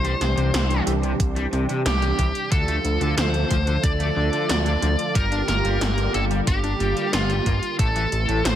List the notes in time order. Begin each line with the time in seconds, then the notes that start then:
Already playing: C2 C3 E3 G3 D4 G4 C5
0.04 G3, closed hi-hat
0.21 C2, snare, closed hi-hat
0.37 C2 C3, closed hi-hat
0.54 C2 C3, snare, closed hi-hat
0.71 closed hi-hat
0.87 C2 E3, closed hi-hat
1.03 C3, closed hi-hat
1.20 C2, kick, closed hi-hat
1.36 G3, closed hi-hat
1.53 C2 C3, closed hi-hat
1.69 C3, closed hi-hat
1.86 C2 G4, snare, closed hi-hat
2.02 C3, closed hi-hat
2.19 C2 E3, kick, closed hi-hat
2.35 closed hi-hat
2.52 D2 D3 F3 A3 F4 A4, kick, closed hi-hat
2.68 A3, closed hi-hat
2.85 D2, closed hi-hat
3.01 D2 D3, closed hi-hat
3.17 D2 D3 C5, snare, closed hi-hat
3.34 closed hi-hat
3.51 D2 F3, kick, closed hi-hat
3.67 D3, closed hi-hat
3.83 D2 D5, kick, closed hi-hat
4.00 A3, closed hi-hat
4.16 D2 D3
4.33 D3, closed hi-hat
4.49 D2 D5, snare, closed hi-hat
4.66 D3, closed hi-hat
4.82 D2 F3, closed hi-hat
4.99 closed hi-hat
5.15 G1 D3 G3 A#3 G4 A#4, kick, closed hi-hat
5.32 D4, closed hi-hat
5.48 G1 A#4, snare, closed hi-hat
5.65 G1 G3, closed hi-hat
5.81 G1 G3, snare, closed hi-hat
5.98 closed hi-hat
6.14 G1 A#3 A4, closed hi-hat
6.31 G3, closed hi-hat
6.47 G1 G4, kick, closed hi-hat
6.64 D4, closed hi-hat
6.80 G1 G3, closed hi-hat
6.97 G3, closed hi-hat
7.13 G1 F4, snare, closed hi-hat
7.30 G3, closed hi-hat
7.46 G1 A#3, kick, closed hi-hat
7.63 closed hi-hat
7.79 A1 A2 C3 E3 A3 E4 A4, kick, closed hi-hat
7.96 E3, closed hi-hat
8.12 A1, closed hi-hat
8.29 A1 A2, closed hi-hat
8.45 A1 A2 C5, snare, closed hi-hat